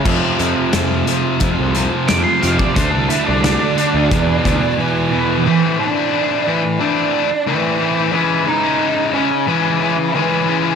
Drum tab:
CC |x---------------|----------------|----------------|----------------|
HH |--x-x-x-x-x-x-x-|x-x-x-x-x-x-----|----------------|----------------|
SD |----o-------o-o-|----o-----------|----------------|----------------|
BD |o-------o------o|o-------o-o-----|----------------|----------------|